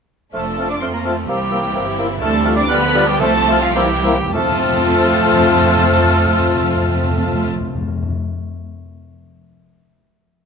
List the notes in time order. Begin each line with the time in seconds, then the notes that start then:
0.33 F1 F3 A3 D4 A4 C5 A5 F6
0.58 A3 C4 F4 C5 F6
0.69 D4 D5 D6
0.80 F2 A3 C4 C5 C6 F6
0.92 A#3 A#4 A#5
1.04 A3 C4 F4 A4 C5 A5 F6
1.28 C2 E3 G3 A#3 C4 G4 C5 G5 E6
1.50 A#3 E4 C5 E6
1.75 G1 A#3 C4 E4 C5 E6
1.98 A#3 E4 C5 E6
2.21 D2 G3 A3 C4 D4 A4 A5 F6
2.46 A3 F4 A4 F6
2.56 D4 D5
2.60 D6
2.69 D2 D3 F3 G3 B3 D4 B4 D5 B5 F6
2.95 G3 F4 D5 F6
3.07 G3 G4 G5
3.20 C2 C3 F3 A3 C4 A4 C5 A5 F6
3.47 A3 F4 C5 F6
3.60 F3 F4 F5
3.75 C2 C3 E3 G3 A#3 C4 E4 G4 C5 G5 E6
3.85 C3
3.94 C3
4.03 C3 A#3 E4 C5 E6
4.13 C3
4.22 C3
4.33 F2 F3 A3 C4 F4 A4 C5 A5 F6
4.42 F2
4.49 F2
4.56 F2
4.63 F2
4.70 F2
4.77 F2
4.84 F2
4.91 F2
4.98 F2
5.05 F2
5.12 F2
5.19 F2
5.26 F2
5.33 F2
5.40 F2
5.54 F2
5.61 F2
5.68 F2
5.75 F2
5.83 F2
5.90 F2
5.97 F2
6.04 F2
6.11 F2
6.18 F2
6.25 F2
6.32 F2
6.40 F2
6.47 F2
6.54 F2
6.61 F2
6.68 F2
6.74 F2
6.81 F2
6.88 F2
6.95 F2
7.02 F2
7.10 F2
7.17 F2
7.24 F2
7.31 F2
7.39 F2
7.46 F2
7.53 F2
7.60 F2
7.68 F2
7.75 F2
7.82 F2
7.89 F2
7.95 F2
8.03 F2
8.09 F2